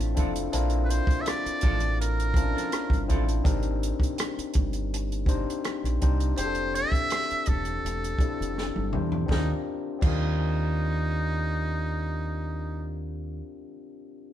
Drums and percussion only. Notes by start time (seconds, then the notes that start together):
0.01 closed hi-hat
0.17 kick, closed hi-hat
0.36 closed hi-hat
0.53 closed hi-hat
0.70 closed hi-hat
0.90 closed hi-hat
1.07 kick, closed hi-hat
1.26 cross-stick, closed hi-hat
1.46 closed hi-hat
1.61 kick, closed hi-hat
1.80 closed hi-hat
2.02 closed hi-hat
2.20 closed hi-hat
2.34 kick, closed hi-hat
2.58 closed hi-hat
2.72 cross-stick, closed hi-hat
2.90 kick, cross-stick, closed hi-hat
3.10 kick, closed hi-hat
3.29 closed hi-hat
3.45 kick, closed hi-hat
3.63 closed hi-hat
3.83 closed hi-hat
4.00 kick, closed hi-hat
4.18 cross-stick, closed hi-hat
4.39 closed hi-hat
4.54 kick, closed hi-hat
4.73 closed hi-hat
4.94 closed hi-hat
5.12 closed hi-hat
5.26 kick, closed hi-hat
5.50 closed hi-hat
5.64 cross-stick, closed hi-hat
5.85 cross-stick, closed hi-hat
6.02 kick, cross-stick, closed hi-hat
6.20 closed hi-hat
6.38 closed hi-hat
6.55 closed hi-hat
6.75 closed hi-hat
6.92 kick, closed hi-hat
7.10 cross-stick, closed hi-hat
7.31 closed hi-hat
7.46 kick, closed hi-hat
7.65 closed hi-hat
7.86 closed hi-hat
8.04 closed hi-hat
8.19 kick, closed hi-hat
8.42 closed hi-hat
8.58 snare
8.76 high tom
8.93 mid tom
9.12 floor tom
9.29 kick, snare
10.02 kick, crash